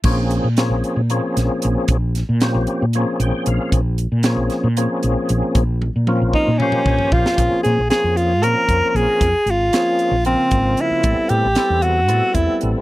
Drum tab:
CC |x-------------|--------------|--------------|--------------|
HH |--x-x-x-x-x-x-|x-x-x-x-x-x-x-|x-x-x-x-x-x-x-|x-------------|
SD |----o-----o---|--o-o---------|----o-o-------|-------------o|
T1 |--------------|--------------|--------------|--o-o---------|
T2 |--------------|--------------|--------------|--------oo----|
FT |--------------|--------------|--------------|-----------o--|
BD |o-------------|o-------------|o-------------|o-----o---o-o-|

CC |--------------|--------------|--------------|
HH |x-x-x-x-x-x-x-|x-x-x-x-x-x-x-|x-x-x-x-x-x-x-|
SD |----o---------|----o---------|----o---------|
T1 |--------------|--------------|--------------|
T2 |--------------|--------------|--------------|
FT |--------------|--------------|--------------|
BD |o---------o---|o---------o---|o---------o---|